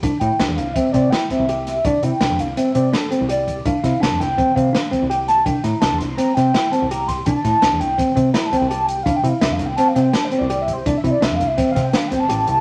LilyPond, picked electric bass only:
\new Staff \with { instrumentName = "Picked electric bass" } { \clef bass \time 5/4 \key d \minor \tempo 4 = 167 c,16 r16 a,16 r16 c,16 e,16 c,8 r8 c8 r8. c,4~ c,16 | c,16 r16 c16 r16 c,16 f,16 c,8 r8 c8 r8. c,4~ c,16 | c,16 r16 c16 r16 c,16 f,16 c,8 r8 c8 r8. c,4~ c,16 | c,16 r16 a,16 r16 c,16 e,16 c,8 r8 c8 r8. c,4~ c,16 |
c,16 r16 a,16 r16 c,16 e,16 c,8 r8 c8 r8. c,4~ c,16 | c,16 r16 c16 r16 c,16 f,16 c,8 r8 c8 r8. c,4~ c,16 | c,16 r16 c16 r16 c,16 f,16 c,8 r8 c8 r8 g,,8 a,,8 c,8 | }